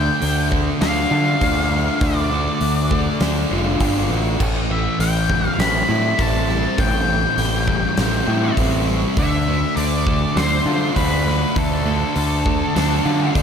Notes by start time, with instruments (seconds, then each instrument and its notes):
Already playing: distorted electric guitar D3 A3, lead electric guitar G5
0.21 fingered electric bass D2, distorted electric guitar D3, open hi-hat
0.50 distorted electric guitar A3, kick
0.81 fingered electric bass D2, distorted electric guitar D4, lead electric guitar F5, snare, open hi-hat
1.11 fingered electric bass D3, distorted electric guitar F4
1.40 fingered electric bass D2, distorted electric guitar D4, kick, open hi-hat
1.70 distorted electric guitar A3
2.00 fingered electric bass D2, distorted electric guitar D3, lead electric guitar D5, kick, open hi-hat
2.31 distorted electric guitar A3
2.61 fingered electric bass D2, distorted electric guitar D3, open hi-hat
2.91 distorted electric guitar A3, kick
3.20 fingered electric bass D2, distorted electric guitar D4, snare, open hi-hat
3.51 fingered electric bass F1, distorted electric guitar F4
3.80 fingered electric bass G1, distorted electric guitar D4, kick, open hi-hat
4.09 fingered electric bass A1, distorted electric guitar A3
4.40 fingered electric bass A1, distorted electric guitar A2, kick, crash
4.71 distorted electric guitar E3, lead electric guitar E5
4.99 fingered electric bass A1, distorted electric guitar E3, lead electric guitar G5, open hi-hat
5.30 distorted electric guitar G3, kick
5.47 lead electric guitar F5
5.58 fingered electric bass A1, distorted electric guitar C4, lead electric guitar B5, snare, open hi-hat
5.89 fingered electric bass A2, distorted electric guitar E4
6.19 fingered electric bass A1, distorted electric guitar C4, lead electric guitar A5, kick, open hi-hat
6.49 distorted electric guitar G3, snare
6.78 fingered electric bass A1, distorted electric guitar A2, lead electric guitar G5, kick, open hi-hat
7.09 distorted electric guitar E3
7.37 fingered electric bass A1, distorted electric guitar E3, open hi-hat
7.68 distorted electric guitar G3, kick
7.97 fingered electric bass A1, distorted electric guitar C4, snare, open hi-hat
8.27 fingered electric bass A2, distorted electric guitar E4
8.57 fingered electric bass A1, distorted electric guitar C4, kick, open hi-hat
8.88 distorted electric guitar G3, snare
9.17 fingered electric bass D2, distorted electric guitar D3, lead electric guitar E5, kick, open hi-hat
9.48 distorted electric guitar A3
9.76 fingered electric bass D2, distorted electric guitar D3, lead electric guitar D5, open hi-hat
10.07 distorted electric guitar A3, kick
10.36 fingered electric bass D2, distorted electric guitar D4, lead electric guitar C5, snare, open hi-hat
10.66 fingered electric bass D3, distorted electric guitar F4
10.96 fingered electric bass D2, distorted electric guitar D4, lead electric guitar B4, kick, open hi-hat
11.26 distorted electric guitar A3, snare
11.56 fingered electric bass D2, distorted electric guitar D3, lead electric guitar A4, kick, open hi-hat
11.85 distorted electric guitar A3
12.15 fingered electric bass D2, distorted electric guitar D3, open hi-hat
12.46 distorted electric guitar A3, kick
12.75 fingered electric bass D2, distorted electric guitar D4, snare, open hi-hat
13.06 fingered electric bass D3, distorted electric guitar F4
13.35 fingered electric bass D2, distorted electric guitar D4, kick, open hi-hat